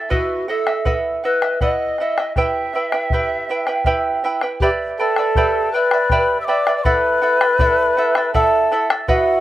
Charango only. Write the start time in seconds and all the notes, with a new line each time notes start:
Already playing: A4
0.10 E4 B4 D#5 E5 F#5
0.48 E4 D#5 E5 F#5
0.67 E4 D#5 E5
0.85 E4 B4 D#5 E5 F#5
1.24 E4 D#5 E5 F#5
1.43 E4 D#5 E5
1.61 E4 B4 D#5 F#5
2.00 E4 D#5 E5 F#5
2.18 E4 D#5 E5
2.37 E4 G4 B4 E5 G5
2.74 E4 B4 E5 G5
2.92 E4 B4 G5
3.13 E4 G4 B4 E5 G5
3.49 E4 B4 E5 G5
3.67 E4 B4 G5
3.86 E4 G4 B4 E5 G5
4.24 E4 B4 E5 G5
4.42 E4 B4 G5
4.62 G4 B4 D5 E5 G5
4.99 B4 D5 E5 G5
5.18 B4 D5 E5
5.36 G4 B4 D5 E5 G5
5.74 B4 D5 E5 G5
5.93 B4 D5 E5
6.11 G4 B4 D5 E5 G5
6.48 B4 D5 E5 G5
6.67 B4 D5 E5
6.85 E4 A4 D5 E5 F#5
7.22 E4 A4 E5 F#5
7.41 E4 A4 E5
7.59 E4 A4 D5 E5 F#5
7.97 E4 A4 E5 F#5
8.16 E4 A4 E5
8.34 E4 A4 D5 E5 F#5
8.72 E4 A4 E5 F#5
8.90 E4 A4 E5
9.08 E4 B4 D#5 E5 F#5